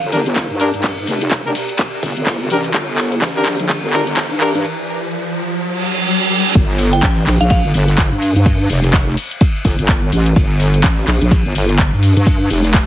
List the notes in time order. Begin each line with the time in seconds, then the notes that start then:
Already playing: G4 A#4 D5 A#5, riser
0.03 G1, cabasa
0.12 G1 D4 G4 A#4, open hi-hat, ride, cabasa
0.26 closed hi-hat, cabasa
0.36 kick, snare, clap, closed hi-hat, ride, cabasa
0.50 G2, cabasa
0.60 D4 G4 A#4, open hi-hat, ride, cabasa
0.74 G2, closed hi-hat, cabasa
0.84 kick, clap, closed hi-hat, ride, cabasa
0.98 cabasa
1.07 F1, open hi-hat, ride, cabasa
1.21 closed hi-hat, ride, cabasa
1.31 kick, snare, clap, closed hi-hat, ride, cabasa
1.45 D4 G4 A#4
1.55 snare, open hi-hat, ride, cabasa
1.69 closed hi-hat, cabasa
1.78 kick, clap, closed hi-hat, ride, cabasa
1.94 cabasa
2.03 G1, kick, open hi-hat, ride, cabasa
2.17 G1, closed hi-hat, cabasa
2.27 kick, snare, clap, closed hi-hat, ride, cabasa
2.41 cabasa
2.50 A1 D4 G4 A#4, open hi-hat, ride, cabasa
2.64 closed hi-hat, cabasa
2.74 G1, kick, clap, closed hi-hat, ride, cabasa
2.89 cabasa
2.98 clap, open hi-hat, ride, cabasa
3.12 closed hi-hat, cabasa
3.22 A1, kick, snare, clap, closed hi-hat, ride, cabasa
3.36 D4 G4 A#4, snare
3.46 A#1, clap, open hi-hat, ride, cabasa
3.60 A#1, closed hi-hat, cabasa
3.69 kick, clap, closed hi-hat, ride, cabasa
3.84 G1, cabasa
3.93 G1 D4 G4 A#4, clap, open hi-hat, ride, cabasa
4.07 closed hi-hat, cabasa
4.17 kick, snare, clap, closed hi-hat, ride, cabasa
4.31 G2, cabasa
4.41 D4 G4 A#4, clap, open hi-hat, ride, cabasa
4.55 G2, closed hi-hat, cabasa
5.60 reverse cymbal
6.55 G1, kick, closed hi-hat, ride, crash, cabasa
6.70 cabasa
6.78 open hi-hat, ride, cabasa
6.93 G5, closed hi-hat, cabasa
7.03 A1, kick, snare, clap, closed hi-hat, ride, cabasa
7.16 snare
7.27 A#1, clap, open hi-hat, ride, cabasa
7.41 A#1 F5, closed hi-hat, cabasa
7.50 F5, kick, closed hi-hat, ride, cabasa
7.65 G1, cabasa
7.74 G1, open hi-hat, ride, cabasa
7.88 closed hi-hat, cabasa
7.98 kick, snare, clap, closed hi-hat, ride, cabasa
8.12 G2, cabasa
8.22 open hi-hat, ride, cabasa
8.36 G2, closed hi-hat, cabasa
8.46 kick, closed hi-hat, ride, cabasa
8.60 cabasa
8.70 F1, open hi-hat, ride, cabasa
8.84 closed hi-hat, ride, cabasa
8.93 kick, snare, clap, closed hi-hat, ride, cabasa
9.08 cabasa
9.17 open hi-hat, ride, cabasa
9.31 closed hi-hat, cabasa
9.41 kick, closed hi-hat, ride, cabasa
9.56 cabasa
9.65 G1, kick, open hi-hat, ride, cabasa
9.79 G1, closed hi-hat, cabasa
9.89 kick, snare, clap, closed hi-hat, ride, cabasa
10.03 cabasa
10.12 A1, open hi-hat, ride, cabasa
10.26 closed hi-hat, cabasa
10.36 G1, kick, closed hi-hat, ride, cabasa
10.51 cabasa
10.60 open hi-hat, ride, cabasa
10.74 closed hi-hat, cabasa
10.84 A1, kick, snare, clap, closed hi-hat, ride, cabasa
10.98 snare
11.08 A#1, clap, open hi-hat, ride, cabasa
11.21 A#1, closed hi-hat, cabasa
11.31 kick, closed hi-hat, ride, cabasa
11.45 G1, cabasa
11.55 G1, open hi-hat, ride, cabasa
11.69 closed hi-hat, cabasa
11.78 kick, snare, clap, closed hi-hat, ride, cabasa
11.93 G2, cabasa
12.03 open hi-hat, ride, cabasa
12.17 G2, closed hi-hat, cabasa
12.27 kick, closed hi-hat, ride, cabasa
12.41 cabasa
12.50 F1, open hi-hat, ride, cabasa
12.64 closed hi-hat, ride, cabasa
12.74 kick, snare, clap, closed hi-hat, ride, cabasa